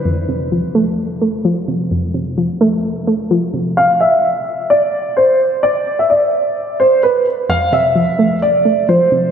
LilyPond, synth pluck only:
\new Staff \with { instrumentName = "Synth pluck" } { \clef bass \time 4/4 \key f \lydian \tempo 4 = 129 f,8 c8 f8 a4 a8 f8 c8 | f,8 c8 f8 a4 a8 f8 c8 | r1 | r1 |
f,8 c8 f8 a4 a8 f8 c8 | }